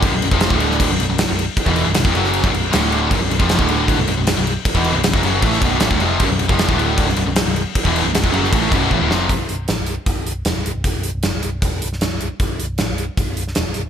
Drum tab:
CC |x-x-x-x-x-x-x-x-|x-x-x-x-x-x-x-x-|x-x-x-x-x-x-x-x-|x-x-x-x-x-x-x-x-|
HH |----------------|----------------|----------------|----------------|
SD |----o--o----o---|----o--o----o---|----o-------o---|----o----o--o---|
BD |o--o-o--o-------|oo---o---o------|o--o-o--o-------|oo---o--o-o--o--|

CC |x-x-x-x-x-x-x-x-|x-x-x-x-x-x-----|----------------|----------------|
HH |----------------|----------------|x-x-x-x-x-x-x-x-|x-x-x-x-x-x-x-x-|
SD |----o----o--o---|----o--o------o-|----o-------o---|----o------oo---|
BD |o--o-o--o-------|oo---o--o-o-o---|o-------o-------|o-------o-------|

CC |----------------|
HH |x-x-x-x-x-x-x-x-|
SD |----o------oo---|
BD |o-------o-------|